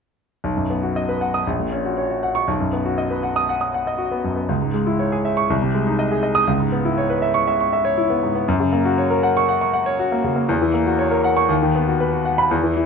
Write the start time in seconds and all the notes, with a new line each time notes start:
0.44 B1
0.56 F#2
0.70 B3
0.83 F#4
0.96 D#5
1.09 B4
1.21 F#5
1.34 D#6
1.47 A#1
1.60 A#2
1.72 C#4
1.85 F#4
1.98 C#5
2.10 F#4
2.23 F#5
2.35 C#6
2.48 B1
2.60 F#2
2.73 B3
2.85 F#4
2.98 D#5
3.10 B4
3.23 F#5
3.36 D#6
3.49 F#5
3.61 D#6
3.74 F#5
3.87 D#5
3.98 F#4
4.11 B3
4.24 F#2
4.36 B3
4.49 C#2
4.62 G#2
4.74 G#3
4.87 E4
4.99 C#5
5.12 G#4
5.25 E5
5.37 C#6
5.50 C2
5.62 C3
5.75 G#3
5.87 D#4
5.99 D#5
6.11 G#4
6.23 D#5
6.35 D#6
6.48 C#2
6.60 G#2
6.72 B3
6.85 E4
6.98 C#5
7.10 B4
7.22 E5
7.34 C#6
7.47 E5
7.60 C#6
7.73 E5
7.85 C#5
7.98 E4
8.10 B3
8.23 G#2
8.35 B3
8.48 F#2
8.60 C#3
8.73 A#3
8.85 F#4
8.98 C#5
9.10 A#4
9.23 F#5
9.37 C#6
9.49 F#5
9.61 C#6
9.74 F#5
9.86 C#5
9.99 F#4
10.12 A#3
10.24 C#3
10.36 A#3
10.49 E2
10.62 E3
10.74 A#3
10.86 F#4
10.99 C#5
11.11 A#4
11.24 F#5
11.37 C#6
11.49 D#2
11.63 D#3
11.75 B3
11.88 F#4
12.00 B4
12.12 F#4
12.25 F#5
12.38 B5
12.51 E2
12.63 E3
12.77 E4